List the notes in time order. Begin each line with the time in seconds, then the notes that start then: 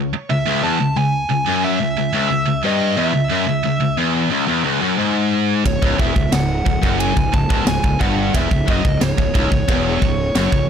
Already playing: C#2
0.14 muted distorted electric guitar stroke
0.30 C#2 E5
0.47 C#2
0.64 E2 A5
0.80 C#2
0.96 C#2 G#5
1.31 C#2
1.48 F#2
1.64 E5
1.81 C#2
1.98 C#2
2.14 C#2
2.31 C#2
2.48 C#2
2.64 G2 D#5
2.97 E2 E5
3.15 C#2
3.31 F#2
3.49 C#2
3.65 C#2
3.82 C#2
3.98 E2
4.31 C#2
4.48 E2
4.65 C#2
4.82 F#2
4.97 G#2
5.65 C#1 C#2 C#5, kick, ride bell
5.82 C#1 C#2, kick
5.99 E1 E2 E5, kick
6.16 C#1 C#2, kick
6.32 C#1 C#2 F#5, snare, ride bell
6.66 C#1 C#2, kick
6.82 F#1 F#2, kick
7.00 G#5, ride bell
7.16 C#1 C#2, kick
7.33 C#1 C#2 A5, kick
7.49 C#1 C#2, kick
7.67 C#1 C#2 G#5, snare, ride bell
7.84 C#1 C#2, kick
8.00 G1 G2 F#5, kick
8.34 E1 E2 E5, kick, ride bell
8.51 C#1 C#2, kick
8.67 F#1 F#2 D#5, kick
8.85 C#1 C#2, kick
9.00 C#1 C#2 C#5, snare, ride bell
9.17 C#1 C#2, kick
9.35 C#1 C#2, kick
9.52 C#1 C#2, kick
9.68 E1 E2, kick, ride bell
10.02 C#1 C#2, kick
10.35 F#1 F#2, snare, ride bell
10.52 C#1 C#2, kick